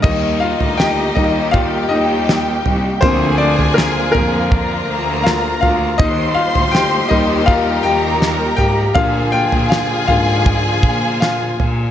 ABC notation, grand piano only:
X:1
M:4/4
L:1/8
Q:1/4=81
K:Eb
V:1 name="Grand piano"
[Ee] [Ff] [Gg] [Ee] [Ff] [Ee]3 | [Cc] [Dd] [B,B] [B,B]3 [Ff] [Ff] | [Ee] [Ff] [Gg] [Ee] [Ff] [Gg]2 [Gg] | [Ff] [Fg] [Ff] [Ff]3 [Ff]2 |]
V:2 name="Grand piano" clef=bass
[E,G,B,] z2 [E,G,B,] z4 | [D,F,B,]8 | z3 [E,G,B,]4- [E,G,B,] | [D,F,B,]3 [D,F,B,] z4 |]